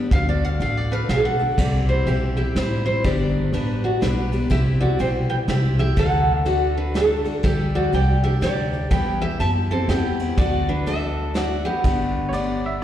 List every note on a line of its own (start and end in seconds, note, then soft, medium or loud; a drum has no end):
0.00 0.12 G3 soft
0.00 0.12 B3 medium
0.00 0.11 D4 medium
0.00 0.12 G4 medium
0.11 0.53 D2 medium
0.11 0.61 D3 medium
0.11 0.59 A3 medium
0.11 0.59 D4 medium
0.11 0.61 F#4 medium
0.11 0.61 A4 medium
0.11 0.28 F5 loud
0.11 kick loud
0.11 closed hi-hat medium
0.29 0.45 D5 medium
0.45 0.60 F5 medium
0.60 1.01 A1 medium
0.60 1.08 A3 medium
0.60 1.09 D4 medium
0.60 1.09 F#4 medium
0.60 1.10 A4 medium
0.60 0.77 F5 medium
0.60 closed hi-hat medium
0.77 0.93 D5 medium
0.92 1.08 D4 medium
0.92 1.08 B4 medium
0.92 1.08 F5 medium
1.09 1.50 B1 medium
1.09 1.40 A3 medium
1.09 1.40 D4 medium
1.09 1.55 D4 medium
1.09 1.39 F#4 medium
1.09 1.55 A4 medium
1.09 1.38 A4 medium
1.09 1.25 F5 medium
1.09 snare medium
1.09 closed hi-hat medium
1.25 1.57 F#5 loud
1.39 1.58 D4 soft
1.39 1.58 F#4 soft
1.39 1.58 A4 medium
1.58 2.00 C2 medium
1.58 2.07 C3 medium
1.58 2.07 G3 medium
1.58 2.07 C4 medium
1.58 2.07 E4 medium
1.58 1.86 G4 medium
1.58 2.08 G4 medium
1.58 1.86 D5 medium
1.58 kick loud
1.58 crash loud
1.89 2.06 E4 medium
1.89 2.06 C5 medium
2.06 2.48 B1 medium
2.06 2.37 G3 medium
2.06 2.38 C4 medium
2.06 2.37 E4 medium
2.06 2.35 G4 medium
2.06 2.36 G4 medium
2.06 2.36 E5 medium
2.06 ride medium
2.37 2.56 C4 soft
2.37 2.56 E4 soft
2.37 2.54 G4 medium
2.37 2.56 G4 medium
2.37 2.54 E5 medium
2.55 2.97 A1 medium
2.55 3.04 G3 medium
2.55 3.05 C4 medium
2.55 2.84 E4 medium
2.55 3.05 E4 medium
2.55 3.05 G4 medium
2.55 2.84 C5 medium
2.55 snare loud
2.55 ride medium
2.86 3.03 E4 medium
2.86 3.04 C5 medium
3.04 3.46 G1 medium
3.04 3.53 G2 medium
3.04 3.53 D3 medium
3.04 3.53 G3 medium
3.04 3.53 B3 medium
3.04 3.53 D4 medium
3.04 3.50 G4 medium
3.04 3.55 G4 medium
3.04 3.50 D5 medium
3.04 kick loud
3.04 ride medium
3.52 3.94 A1 medium
3.52 4.00 G3 medium
3.52 4.01 B3 medium
3.52 3.82 D4 medium
3.52 4.01 D4 medium
3.52 4.02 G4 medium
3.52 3.84 B4 medium
3.52 ride medium
3.84 4.01 F#4 medium
3.84 4.01 D5 medium
4.01 4.44 B1 medium
4.01 4.32 G3 medium
4.01 4.32 B3 medium
4.01 4.47 D4 medium
4.01 4.31 D4 medium
4.01 4.31 G4 medium
4.01 4.47 B4 medium
4.01 snare medium
4.01 ride medium
4.32 4.49 G3 soft
4.32 4.50 B3 soft
4.32 4.50 D4 soft
4.32 4.50 G4 medium
4.32 ride medium
4.50 4.93 C2 medium
4.50 4.99 C3 medium
4.50 4.98 G3 medium
4.50 4.98 C4 medium
4.50 4.99 E4 medium
4.50 5.00 G4 medium
4.50 4.59 G4 medium
4.50 4.59 E5 medium
4.50 kick loud
4.50 ride medium
4.81 4.98 F#4 medium
4.81 4.98 D5 medium
4.99 5.41 B1 medium
4.99 5.47 G3 medium
4.99 5.47 C4 medium
4.99 5.48 E4 medium
4.99 5.49 G4 medium
4.99 5.08 C5 medium
4.99 5.08 G5 medium
4.99 ride medium
5.30 5.35 B4 medium
5.30 5.34 G5 medium
5.48 5.90 C2 medium
5.48 5.78 G3 medium
5.48 5.79 C4 medium
5.48 5.79 E4 medium
5.48 5.77 G4 medium
5.48 5.78 E5 medium
5.48 snare medium
5.48 ride medium
5.78 5.97 C4 soft
5.78 5.98 E4 soft
5.78 5.97 G4 medium
5.78 5.96 E5 loud
5.97 7.23 D2 medium
5.97 7.43 D3 medium
5.97 6.45 A3 medium
5.97 6.46 D4 medium
5.97 6.46 F#4 medium
5.97 6.47 A4 medium
5.97 6.44 A4 medium
5.97 6.48 F#5 loud
5.97 kick loud
5.97 ride medium
6.45 6.93 A3 medium
6.45 6.94 D4 medium
6.45 6.74 F#4 medium
6.45 6.95 F#4 medium
6.45 6.95 A4 medium
6.45 6.77 D5 medium
6.45 ride medium
6.77 6.94 D4 medium
6.77 6.96 B4 medium
6.94 7.25 A3 medium
6.94 7.25 D4 medium
6.94 7.41 D4 medium
6.94 7.24 F#4 medium
6.94 7.41 A4 medium
6.94 7.23 A4 medium
6.94 snare medium
6.94 ride medium
7.25 7.43 D4 soft
7.25 7.44 F#4 soft
7.25 7.43 A4 medium
7.25 ride medium
7.43 7.86 D2 medium
7.43 7.92 D3 medium
7.43 7.92 G3 medium
7.43 7.92 D4 medium
7.43 7.93 G4 medium
7.43 7.72 G4 medium
7.43 7.93 A4 medium
7.43 7.75 E5 loud
7.43 kick loud
7.43 ride medium
7.75 7.92 F#4 medium
7.75 7.92 D5 loud
7.92 8.34 C2 medium
7.92 8.23 G3 medium
7.92 8.23 D4 medium
7.92 8.24 G4 medium
7.92 8.23 A4 medium
7.92 8.22 D5 medium
7.92 8.22 G5 medium
7.92 ride medium
8.24 8.41 D4 soft
8.24 8.41 G4 medium
8.24 8.42 G4 soft
8.24 8.42 A4 soft
8.24 8.42 E5 medium
8.41 8.83 D2 medium
8.41 8.72 G3 medium
8.41 8.72 D4 medium
8.41 8.88 G4 medium
8.41 8.73 G4 medium
8.41 8.72 A4 medium
8.41 8.87 D5 medium
8.41 snare medium
8.41 ride medium
8.73 8.91 D4 soft
8.73 8.91 G4 soft
8.73 8.91 A4 medium
8.91 9.33 E2 medium
8.91 9.39 E3 medium
8.91 9.38 G3 medium
8.91 9.39 B3 medium
8.91 9.40 E4 medium
8.91 9.40 G4 medium
8.91 9.19 B4 medium
8.91 9.19 G5 loud
8.91 kick loud
8.91 ride medium
9.22 9.39 G4 medium
9.22 9.38 E5 loud
9.40 9.81 F#2 medium
9.40 9.70 G3 medium
9.40 9.70 B3 medium
9.40 9.70 E4 medium
9.40 9.70 G4 medium
9.40 9.49 E5 medium
9.40 9.48 A5 loud
9.40 ride medium
9.71 9.88 B3 soft
9.71 9.88 C4 medium
9.71 9.88 E4 soft
9.71 9.89 G4 medium
9.71 9.89 A4 medium
9.88 10.30 E2 medium
9.88 10.19 G3 medium
9.88 10.19 B3 medium
9.88 10.34 B3 medium
9.88 10.19 E4 medium
9.88 10.34 G4 medium
9.88 10.18 G4 medium
9.88 snare medium
9.88 ride medium
10.19 10.38 B3 soft
10.19 10.38 E4 soft
10.19 10.38 G4 soft
10.19 ride medium
10.38 11.64 D2 medium
10.38 10.87 D3 medium
10.38 10.86 A3 medium
10.38 10.87 D4 medium
10.38 10.66 F#4 medium
10.38 10.87 F#4 medium
10.38 10.88 A4 medium
10.38 10.69 D5 loud
10.38 kick loud
10.38 ride medium
10.69 10.86 D4 medium
10.69 10.86 B4 medium
10.86 11.33 A3 medium
10.86 11.35 D4 medium
10.86 11.35 F#4 medium
10.86 11.32 A4 medium
10.86 11.35 A4 medium
10.86 11.32 E5 medium
10.86 ride medium
11.34 11.84 A3 medium
11.34 11.85 D4 medium
11.34 11.64 F#4 medium
11.34 11.85 F#4 medium
11.34 11.85 A4 medium
11.34 11.66 D5 medium
11.34 snare loud
11.34 ride medium
11.65 12.84 B3 medium
11.65 12.84 G4 medium
11.84 12.84 G1 medium
11.84 12.33 G2 medium
11.84 12.33 D3 medium
11.84 12.32 A3 medium
11.84 12.33 B3 medium
11.84 12.33 D4 medium
11.84 12.33 G4 medium
11.84 kick loud
11.84 ride medium
12.29 12.32 C#5 medium
12.33 12.81 A3 medium
12.33 12.82 B3 medium
12.33 12.83 D4 medium
12.33 12.83 G4 medium
12.33 12.65 D5 medium
12.33 ride medium
12.66 12.82 E5 medium